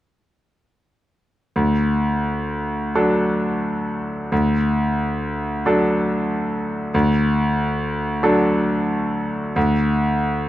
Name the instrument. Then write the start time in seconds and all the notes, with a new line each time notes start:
grand piano
1.56 D2
2.95 F#3 D4 A4
4.32 D2
5.65 F#3 D4 A4
6.94 D2
8.23 F#3 D4 A4
9.56 D2